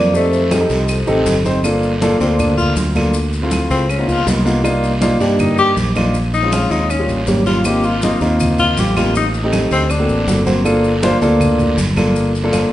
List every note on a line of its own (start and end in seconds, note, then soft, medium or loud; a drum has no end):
0.00 0.64 F2 medium
0.00 0.13 A#3 medium
0.00 0.15 D5 medium
0.13 0.50 A3 medium
0.13 0.40 C4 medium
0.13 0.40 D#4 medium
0.13 0.40 G4 medium
0.13 0.40 A4 medium
0.13 0.49 C5 loud
0.13 high conga soft
0.13 long guiro medium
0.13 maracas medium
0.33 high conga soft
0.33 maracas soft
0.51 1.43 F3 medium
0.51 0.58 C4 medium
0.51 0.58 D#4 medium
0.51 0.58 G4 medium
0.51 0.58 A4 medium
0.51 1.42 A4 medium
0.51 high conga loud
0.51 short guiro medium
0.51 claves medium
0.51 maracas medium
0.60 0.93 C4 medium
0.60 0.94 D#4 medium
0.60 0.94 G4 medium
0.60 0.94 A4 medium
0.69 1.05 C2 medium
0.69 high conga soft
0.69 short guiro medium
0.69 maracas soft
0.88 high conga soft
0.88 long guiro medium
0.88 claves medium
0.88 maracas medium
1.07 1.25 A1 medium
1.07 1.34 C4 medium
1.07 1.34 D#4 loud
1.07 1.34 G4 medium
1.07 1.34 A4 loud
1.07 high conga soft
1.07 maracas soft
1.26 2.14 G1 medium
1.26 high conga medium
1.26 short guiro medium
1.26 maracas medium
1.45 1.58 C4 medium
1.45 1.58 D#4 medium
1.45 1.59 G4 medium
1.45 1.59 C5 medium
1.45 high conga medium
1.45 short guiro medium
1.45 maracas soft
1.64 1.90 A#3 medium
1.64 1.90 D4 medium
1.64 1.91 F4 medium
1.64 1.91 A4 medium
1.64 high conga soft
1.64 long guiro medium
1.64 claves medium
1.64 maracas medium
1.83 high conga soft
1.83 maracas soft
2.01 2.14 A#3 medium
2.01 2.15 D4 medium
2.01 2.15 F4 medium
2.01 2.15 A4 loud
2.01 high conga loud
2.01 short guiro medium
2.01 maracas medium
2.20 2.73 D2 medium
2.20 2.73 A#3 medium
2.20 2.41 C4 medium
2.20 2.73 D4 medium
2.20 2.73 F4 medium
2.20 2.73 A4 medium
2.20 high conga soft
2.20 short guiro medium
2.20 maracas soft
2.39 2.57 D4 medium
2.39 high conga soft
2.39 low conga medium
2.39 long guiro medium
2.39 claves medium
2.39 maracas medium
2.57 2.75 F4 loud
2.57 high conga soft
2.57 low conga medium
2.57 maracas soft
2.76 3.64 D2 medium
2.76 high conga medium
2.76 short guiro medium
2.76 maracas medium
2.95 3.14 A#3 medium
2.95 3.14 D4 medium
2.95 3.14 F4 medium
2.95 3.15 A4 medium
2.95 high conga medium
2.95 short guiro medium
2.95 claves medium
2.95 maracas soft
3.14 long guiro medium
3.14 maracas medium
3.33 high conga soft
3.33 maracas soft
3.42 3.82 A3 medium
3.42 3.82 C4 medium
3.42 3.82 E4 medium
3.42 3.82 F4 medium
3.51 high conga medium
3.51 short guiro medium
3.51 claves medium
3.51 maracas medium
3.70 4.05 C#2 loud
3.70 3.91 C4 medium
3.70 high conga soft
3.70 short guiro medium
3.70 maracas soft
3.89 4.10 C#4 medium
3.89 high conga soft
3.89 long guiro medium
3.89 claves medium
3.89 maracas medium
3.99 4.18 A#3 medium
3.99 4.19 B3 medium
3.99 4.19 D#4 medium
3.99 4.19 F4 medium
4.08 4.26 C#2 medium
4.08 4.27 F4 loud
4.08 high conga soft
4.08 maracas soft
4.26 5.15 C2 medium
4.26 4.40 A#3 medium
4.26 4.40 B3 medium
4.26 4.40 D#4 medium
4.26 4.40 F4 medium
4.26 high conga medium
4.26 short guiro medium
4.26 maracas medium
4.44 4.58 A#3 medium
4.44 4.59 B3 medium
4.44 4.59 D#4 medium
4.44 4.59 F4 medium
4.44 short guiro medium
4.44 maracas soft
4.63 4.90 A#3 medium
4.63 4.90 D4 medium
4.63 4.90 D#4 medium
4.63 4.91 F4 loud
4.63 high conga soft
4.63 long guiro medium
4.63 claves medium
4.63 maracas medium
4.83 high conga soft
4.83 maracas soft
5.01 5.14 A#3 medium
5.01 5.15 D4 medium
5.01 5.15 D#4 medium
5.01 5.15 F4 loud
5.01 high conga medium
5.01 short guiro medium
5.01 maracas medium
5.19 5.73 G2 loud
5.19 5.73 A#3 medium
5.19 5.73 D4 medium
5.19 5.42 D4 medium
5.19 5.73 D#4 medium
5.19 5.73 G4 medium
5.19 high conga soft
5.19 short guiro medium
5.19 maracas soft
5.39 5.58 D#4 medium
5.39 high conga soft
5.39 low conga medium
5.39 long guiro medium
5.39 claves medium
5.39 maracas medium
5.58 5.70 G4 loud
5.58 high conga soft
5.58 maracas soft
5.77 6.65 A#1 medium
5.77 high conga medium
5.77 short guiro medium
5.77 maracas medium
5.95 6.15 A#3 medium
5.95 6.15 D4 medium
5.95 6.15 D#4 medium
5.95 6.15 F4 medium
5.95 high conga medium
5.95 short guiro medium
5.95 claves medium
5.95 maracas soft
6.14 high conga soft
6.14 long guiro medium
6.14 maracas medium
6.34 6.55 D#4 loud
6.34 high conga soft
6.34 maracas soft
6.42 6.82 G#3 medium
6.42 6.82 C4 medium
6.42 6.82 C#4 medium
6.42 6.82 F4 medium
6.52 6.73 F4 loud
6.52 high conga loud
6.52 short guiro medium
6.52 claves medium
6.52 maracas medium
6.71 7.06 D#2 medium
6.71 6.92 D#4 loud
6.71 high conga soft
6.71 short guiro medium
6.71 maracas soft
6.90 7.09 C#4 medium
6.90 high conga soft
6.90 long guiro medium
6.90 claves medium
6.90 maracas medium
6.99 7.19 G3 medium
6.99 7.19 A#3 medium
6.99 7.19 C#4 medium
6.99 7.19 F4 medium
7.08 7.26 A1 medium
7.08 high conga soft
7.08 maracas soft
7.26 8.15 G#1 medium
7.26 7.41 G3 medium
7.26 7.41 A#3 medium
7.26 7.41 C#4 medium
7.26 7.41 G4 medium
7.26 high conga medium
7.26 short guiro medium
7.26 maracas medium
7.46 7.59 G3 medium
7.46 7.59 A#3 medium
7.46 7.60 C#4 medium
7.46 7.67 F4 medium
7.46 7.60 F4 medium
7.46 high conga medium
7.46 short guiro medium
7.46 maracas soft
7.65 7.91 A#3 medium
7.65 7.91 C4 medium
7.65 7.92 D#4 medium
7.65 7.92 F4 medium
7.65 7.86 G4 loud
7.65 long guiro medium
7.65 claves medium
7.65 maracas medium
7.83 8.05 F4 loud
7.83 high conga soft
7.83 maracas soft
8.02 8.16 A#3 medium
8.02 8.16 C4 medium
8.02 8.16 D#4 medium
8.02 8.22 D#4 medium
8.02 8.16 F4 medium
8.02 high conga medium
8.02 short guiro medium
8.02 maracas medium
8.21 8.73 D#2 medium
8.21 8.74 A#3 medium
8.21 8.74 C4 medium
8.21 8.74 D#4 medium
8.21 8.74 F4 medium
8.21 high conga soft
8.21 short guiro medium
8.21 maracas soft
8.40 high conga soft
8.40 low conga medium
8.40 long guiro medium
8.40 claves medium
8.40 maracas medium
8.58 8.81 F4 loud
8.58 high conga soft
8.58 low conga medium
8.58 maracas soft
8.77 9.65 A1 medium
8.77 8.96 G4 medium
8.77 high conga medium
8.77 short guiro medium
8.77 maracas medium
8.96 9.15 A#3 medium
8.96 9.15 C4 medium
8.96 9.15 D#4 medium
8.96 9.14 F4 loud
8.96 9.16 G4 medium
8.96 high conga medium
8.96 short guiro medium
8.96 claves medium
8.96 maracas soft
9.15 9.28 D#4 medium
9.15 high conga soft
9.15 long guiro medium
9.15 maracas medium
9.34 high conga soft
9.34 maracas soft
9.43 9.83 A3 medium
9.43 9.83 C4 medium
9.43 9.83 D#4 medium
9.43 9.83 G4 medium
9.53 high conga medium
9.53 short guiro medium
9.53 claves medium
9.53 maracas medium
9.71 10.06 D2 loud
9.71 9.92 C4 medium
9.71 short guiro medium
9.71 maracas soft
9.90 10.47 D4 medium
9.90 high conga soft
9.90 long guiro medium
9.90 claves medium
9.90 maracas medium
9.99 10.19 A#3 medium
9.99 10.19 C4 medium
9.99 10.19 F#4 medium
9.99 10.19 A4 medium
10.09 10.26 A1 medium
10.09 high conga soft
10.09 maracas soft
10.27 11.16 G1 medium
10.27 10.41 A#3 medium
10.27 10.41 C4 medium
10.27 10.41 F#4 medium
10.27 10.41 A4 medium
10.27 high conga medium
10.27 short guiro medium
10.27 maracas medium
10.45 10.59 A#3 medium
10.45 10.60 C4 medium
10.45 10.60 F#4 medium
10.45 10.60 C5 loud
10.45 high conga medium
10.45 short guiro medium
10.45 maracas soft
10.64 10.91 A#3 medium
10.64 10.91 D4 medium
10.64 10.91 F4 medium
10.64 10.92 A4 loud
10.64 high conga soft
10.64 long guiro medium
10.64 claves medium
10.64 maracas medium
10.84 high conga soft
10.84 maracas soft
11.02 11.16 A#3 loud
11.02 11.16 D4 medium
11.02 11.16 F4 loud
11.02 11.16 C5 loud
11.02 high conga loud
11.02 short guiro medium
11.02 maracas medium
11.21 11.74 D2 loud
11.21 11.74 A#3 loud
11.21 11.74 D4 medium
11.21 11.74 F4 medium
11.21 11.74 A4 loud
11.21 high conga soft
11.21 short guiro medium
11.21 maracas soft
11.40 high conga soft
11.40 low conga medium
11.40 long guiro medium
11.40 claves medium
11.40 maracas medium
11.59 high conga soft
11.59 low conga medium
11.59 maracas soft
11.77 12.66 G1 medium
11.77 high conga medium
11.77 short guiro medium
11.77 maracas medium
11.96 12.29 A#3 medium
11.96 12.29 D4 medium
11.96 12.30 F4 medium
11.96 12.30 A4 loud
11.96 high conga medium
11.96 short guiro medium
11.96 claves medium
11.96 maracas soft
12.15 high conga soft
12.15 long guiro medium
12.15 maracas medium
12.35 high conga soft
12.35 maracas soft
12.43 12.72 A#3 medium
12.43 12.72 D4 medium
12.43 12.72 F4 medium
12.43 12.72 A4 loud
12.53 high conga loud
12.53 short guiro medium
12.53 claves medium
12.53 maracas medium